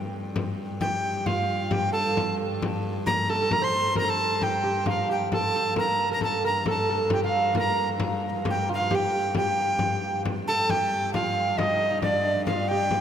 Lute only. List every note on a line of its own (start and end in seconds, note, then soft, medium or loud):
0.82 1.28 G4 medium
1.27 1.73 F4 medium
1.71 1.92 G4 medium
1.93 2.14 A4 medium
2.15 2.37 A4 medium
3.06 3.29 A#4 medium
3.30 3.34 A4 medium
3.36 3.40 A4 medium
3.42 3.52 A4 medium
3.53 3.62 A#4 medium
3.62 3.96 C5 medium
3.97 4.07 A#4 medium
4.08 4.39 A4 medium
4.42 4.62 G4 medium
4.64 4.87 G4 medium
4.87 5.10 F4 medium
5.09 5.32 G4 medium
5.33 5.55 A4 medium
5.56 5.78 A4 medium
5.78 6.09 A#4 medium
6.11 6.22 A#4 medium
6.22 6.44 A4 medium
6.44 6.67 A#4 medium
6.67 6.88 A4 medium
6.90 7.12 A4 medium
7.13 7.24 G4 medium
7.24 7.58 F4 medium
7.57 7.88 A#4 medium
8.46 8.69 G4 medium
8.69 8.74 F4 medium
8.75 8.79 F4 medium
8.80 8.91 F4 medium
8.91 9.33 G4 medium
9.37 10.22 G4 medium
10.49 10.70 A4 medium
10.71 11.16 G4 medium
11.16 11.60 F4 medium
11.60 11.74 D#4 medium
11.76 11.89 D#4 medium
11.90 12.03 D#4 medium
12.04 12.50 D4 medium
12.50 12.72 F4 medium
12.71 12.93 G4 medium
12.94 13.01 G4 medium